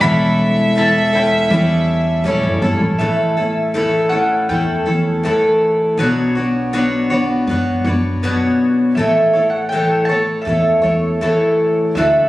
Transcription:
0.00 1.46 E1 medium
0.00 0.76 E3 medium
0.00 0.74 G3 medium
0.00 0.75 C#4 medium
0.00 0.77 E4 medium
0.00 0.77 A4 medium
0.00 2.27 E5 loud
0.00 0.77 B5 loud
0.75 1.13 G3 medium
0.75 1.13 C#4 medium
0.75 1.14 E4 medium
0.75 1.12 A4 medium
0.75 1.15 A5 medium
1.13 1.51 C#4 soft
1.13 1.51 E4 soft
1.13 1.50 A4 medium
1.13 2.22 G5 medium
1.50 2.21 E2 loud
1.50 2.23 G3 medium
1.50 2.24 C#4 medium
1.50 2.25 E4 medium
1.50 2.26 A4 medium
2.24 2.42 E1 medium
2.24 2.62 G3 medium
2.24 2.62 C#4 medium
2.24 2.63 E4 medium
2.24 2.61 A4 medium
2.24 2.63 C#5 medium
2.43 2.60 F#1 medium
2.62 2.79 G1 medium
2.62 3.00 E4 soft
2.62 2.99 A4 medium
2.62 3.00 A4 medium
2.66 3.00 C#4 soft
2.80 2.97 A1 medium
2.99 4.45 A1 medium
2.99 3.37 A2 medium
2.99 3.37 E3 medium
2.99 3.37 A3 medium
2.99 3.37 C#4 medium
2.99 3.36 E4 medium
2.99 3.36 A4 medium
2.99 4.07 E5 medium
3.37 3.74 A3 soft
3.37 3.74 C#4 soft
3.37 3.75 E4 soft
3.37 3.74 A4 soft
3.74 4.11 A2 medium
3.74 4.11 E3 medium
3.74 4.12 A3 medium
3.74 4.11 C#4 medium
3.74 4.11 E4 medium
3.74 4.09 A4 medium
4.09 4.48 A3 soft
4.09 4.49 C#4 soft
4.09 4.49 E4 soft
4.09 4.48 A4 soft
4.09 4.49 F#5 medium
4.49 4.85 E2 medium
4.49 4.86 A3 soft
4.49 4.87 C#4 medium
4.49 4.85 E4 soft
4.49 4.84 A4 soft
4.49 5.57 G5 medium
4.86 5.22 E2 medium
4.86 5.24 A3 soft
4.86 5.24 C#4 soft
4.86 5.24 E4 soft
4.86 5.23 A4 soft
5.23 5.97 A2 medium
5.23 5.98 E3 medium
5.23 5.98 A3 medium
5.23 5.99 C#4 medium
5.23 5.99 E4 medium
5.23 6.00 A4 medium
5.97 7.44 B1 medium
5.97 6.35 B2 medium
5.97 6.36 F#3 medium
5.97 6.36 B3 medium
5.97 6.36 D4 medium
5.97 6.36 F#4 medium
5.97 6.34 C#5 medium
6.35 6.72 B3 soft
6.35 6.73 D4 soft
6.35 6.74 F#4 soft
6.35 6.73 C#5 soft
6.73 7.10 B2 medium
6.73 7.11 F#3 medium
6.73 7.11 B3 medium
6.73 7.11 D4 medium
6.73 7.10 F#4 medium
6.73 7.09 C#5 medium
7.10 7.46 B3 soft
7.10 7.48 D4 soft
7.10 7.48 F#4 medium
7.10 7.48 C#5 medium
7.47 7.83 F#2 medium
7.47 7.85 B3 medium
7.47 7.86 D4 medium
7.47 7.86 F#4 medium
7.51 7.84 C#5 medium
7.84 8.20 F#2 medium
7.84 8.23 D4 soft
7.84 8.23 F#4 soft
7.84 8.23 C#5 soft
7.89 8.22 B3 soft
8.23 8.97 B2 medium
8.23 8.97 F#3 medium
8.23 8.97 B3 medium
8.23 8.98 D4 medium
8.23 8.98 F#4 medium
8.23 8.98 C#5 medium
8.95 10.42 A1 medium
8.95 9.34 A2 medium
8.95 9.35 E3 medium
8.95 9.35 A3 medium
8.95 9.35 E4 medium
8.95 9.32 C#5 medium
8.95 9.54 E5 medium
8.99 9.34 A4 medium
9.33 9.72 A3 soft
9.33 9.72 E4 soft
9.33 9.72 A4 soft
9.33 9.71 C#5 soft
9.50 9.69 F#5 medium
9.69 10.09 A2 medium
9.69 10.10 E3 medium
9.69 10.10 E4 medium
9.69 10.05 G5 medium
9.73 10.10 A3 medium
9.73 10.09 A4 medium
9.73 10.08 C#5 medium
10.05 10.46 C#5 soft
10.05 10.42 A5 medium
10.10 10.44 A3 soft
10.10 10.46 E4 soft
10.10 10.46 A4 soft
10.42 10.83 A3 medium
10.42 11.52 E5 medium
10.46 10.82 E2 medium
10.46 10.83 E4 soft
10.46 10.82 A4 soft
10.46 10.81 C#5 medium
10.82 11.19 E2 medium
10.82 11.21 A3 soft
10.82 11.21 E4 soft
10.82 11.21 A4 soft
10.82 11.20 C#5 soft
11.21 11.96 A2 medium
11.21 11.96 E3 medium
11.21 11.97 A3 medium
11.21 11.98 E4 medium
11.21 11.98 A4 medium
11.21 11.97 C#5 medium
11.95 12.29 D2 medium
11.95 12.29 D3 medium
11.95 12.29 F#3 medium
11.95 12.29 A3 medium
11.95 12.29 D4 medium
11.95 12.29 E4 medium
11.95 12.29 A4 medium
11.95 12.29 E5 medium

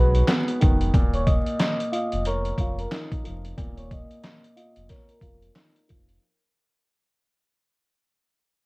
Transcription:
0.00 0.23 B1 medium
0.00 0.96 G#2 medium
0.00 0.96 F#4 medium
0.00 0.94 G#4 medium
0.00 0.25 B4 medium
0.00 0.25 B5 medium
0.15 closed hi-hat medium
0.28 0.94 B3 medium
0.28 snare loud
0.28 clap medium
0.28 closed hi-hat medium
0.48 closed hi-hat medium
0.61 0.90 F1 medium
0.61 0.94 D#3 medium
0.61 kick loud
0.61 closed hi-hat medium
0.81 closed hi-hat medium
0.94 1.39 D#1 loud
0.94 2.59 A#2 medium
0.94 kick loud
0.94 closed hi-hat medium
1.14 1.26 C#5 medium
1.14 1.26 C#6 medium
1.14 closed hi-hat medium
1.26 1.88 D#5 medium
1.26 1.89 D#6 medium
1.26 kick medium
1.26 closed hi-hat medium
1.47 closed hi-hat soft
1.60 snare loud
1.60 clap medium
1.60 closed hi-hat loud
1.80 closed hi-hat medium
1.92 2.59 F4 medium
1.92 2.22 D#5 medium
1.92 2.22 D#6 medium
1.92 closed hi-hat medium
2.12 2.53 F1 medium
2.12 closed hi-hat medium
2.25 3.91 A#4 loud
2.25 2.75 C#5 medium
2.25 2.76 C#6 medium
2.25 closed hi-hat loud
2.45 closed hi-hat medium
2.58 2.87 F1 loud
2.58 4.24 F4 medium
2.58 kick medium
2.58 closed hi-hat medium
2.79 2.91 A#4 medium
2.79 2.91 A#5 medium
2.79 closed hi-hat soft
2.91 4.56 D#4 medium
2.91 snare loud
2.91 clap medium
2.91 closed hi-hat medium
3.12 kick loud
3.12 closed hi-hat medium
3.24 3.53 F1 medium
3.24 4.89 F3 medium
3.24 closed hi-hat medium
3.45 closed hi-hat medium
3.58 4.03 D#1 loud
3.58 5.22 A#2 loud
3.58 kick loud
3.58 closed hi-hat medium
3.77 3.89 C#5 medium
3.77 3.89 C#6 medium
3.77 closed hi-hat medium
3.91 4.53 D#5 medium
3.91 4.54 D#6 medium
3.91 kick medium
3.91 closed hi-hat medium
4.11 closed hi-hat soft
4.23 snare loud
4.23 clap medium
4.23 closed hi-hat loud
4.44 closed hi-hat medium
4.56 5.21 F4 medium
4.56 4.86 D#5 medium
4.56 4.87 D#6 medium
4.56 closed hi-hat medium
4.76 4.88 F1 medium
4.76 closed hi-hat medium
4.89 6.21 A#4 loud
4.89 5.07 C#5 medium
4.89 5.08 C#6 medium
4.89 kick medium
4.89 snare soft
4.89 closed hi-hat loud
5.09 5.20 A#4 medium
5.09 5.21 A#5 medium
5.09 closed hi-hat medium
5.22 5.50 F1 loud
5.22 6.21 F4 medium
5.22 5.52 A#4 medium
5.22 5.52 A#5 medium
5.22 kick medium
5.22 closed hi-hat medium
5.43 closed hi-hat soft
5.56 6.22 D#4 medium
5.56 snare loud
5.56 clap medium
5.56 closed hi-hat medium
5.76 closed hi-hat medium
5.88 6.18 F1 medium
5.88 6.21 F3 medium
5.88 kick loud
5.88 closed hi-hat medium
6.09 closed hi-hat medium

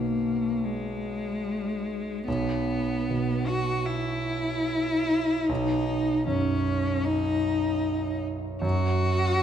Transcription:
0.00 2.22 B1 soft
0.00 2.27 B2 soft
0.00 0.66 A#3 medium
0.64 2.27 G#3 medium
2.28 5.46 B1 soft
2.28 3.49 B3 medium
3.10 5.51 B2 soft
3.47 3.88 F#4 medium
3.86 5.50 E4 medium
5.48 8.59 B1 soft
5.48 6.27 D#4 medium
6.27 8.60 F#2 soft
6.27 7.07 C#4 medium
7.05 8.24 D#4 medium
8.62 9.43 F#2 soft
8.62 9.43 F#4 medium

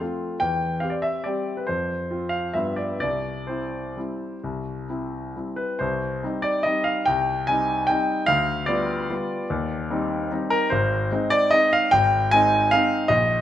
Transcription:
0.01 0.37 A3 soft
0.01 0.37 C4 soft
0.01 0.38 F4 medium
0.40 0.81 E2 medium
0.40 0.82 G5 loud
0.80 1.21 C4 soft
0.80 1.22 G4 medium
0.80 0.92 F5 medium
0.90 1.02 D5 medium
1.02 1.25 E5 medium
1.24 1.64 G3 soft
1.24 1.64 C4 soft
1.24 1.65 G4 medium
1.24 1.57 D5 medium
1.57 1.68 B4 medium
1.67 2.09 F2 medium
1.67 2.31 C5 medium
2.11 2.51 C4 soft
2.11 2.51 F4 medium
2.29 2.53 F5 medium
2.53 3.00 G2 medium
2.53 2.97 G3 soft
2.53 2.98 B3 soft
2.53 2.98 F4 soft
2.53 2.77 E5 medium
2.76 2.99 D5 medium
3.00 3.47 C2 medium
3.00 3.47 D5 medium
3.47 3.92 C4 soft
3.47 3.92 E4 soft
3.47 5.34 C5 medium
3.97 4.38 G3 soft
3.97 4.38 C4 soft
3.97 4.39 E4 soft
4.44 4.87 C2 medium
4.90 5.31 C4 soft
4.90 5.31 E4 medium
5.36 5.76 G3 soft
5.36 5.76 C4 soft
5.36 5.77 E4 soft
5.56 5.79 B4 medium
5.79 6.21 C2 medium
5.79 6.43 C5 medium
6.23 6.61 G3 soft
6.23 6.61 C4 soft
6.23 6.61 D#4 medium
6.42 6.64 D5 loud
6.63 7.02 G3 medium
6.63 7.02 C4 medium
6.63 7.02 D#4 medium
6.63 6.85 D#5 medium
6.84 7.05 F5 medium
7.06 7.46 C2 medium
7.06 7.47 G5 loud
7.47 7.85 G3 medium
7.47 7.85 C4 soft
7.47 7.86 D#4 medium
7.47 7.88 G#5 loud
7.87 8.24 G3 soft
7.87 8.25 C4 soft
7.87 8.25 D#4 medium
7.87 8.27 G5 loud
8.26 8.67 D2 medium
8.26 8.67 F5 loud
8.66 9.06 G3 medium
8.66 9.06 B3 medium
8.66 9.07 F4 medium
8.66 10.30 D5 loud
9.10 9.47 G3 medium
9.10 9.47 B3 medium
9.10 9.47 F4 medium
9.50 9.89 D#2 medium
9.90 10.27 G3 medium
9.90 10.27 C4 medium
9.90 10.27 D#4 medium
10.31 10.66 G3 medium
10.31 10.66 C4 medium
10.31 10.67 D#4 medium
10.50 10.70 A#4 loud
10.70 11.10 G#1 medium
10.70 11.30 C5 medium
11.12 11.48 G#3 medium
11.12 11.48 C4 medium
11.12 11.49 D#4 medium
11.30 11.51 D5 loud
11.51 11.87 G#3 medium
11.51 11.88 C4 medium
11.51 11.88 D#4 medium
11.51 11.71 D#5 loud
11.73 11.92 F5 loud
11.91 12.30 G#1 medium
11.91 12.31 G5 loud
12.31 12.68 G#3 medium
12.31 12.68 C4 medium
12.31 12.68 D#4 medium
12.31 12.71 G#5 loud
12.71 13.07 G#3 medium
12.71 13.07 C4 medium
12.71 13.08 D#4 medium
12.71 13.10 F5 loud
13.08 13.41 A#1 medium
13.08 13.41 D#5 loud

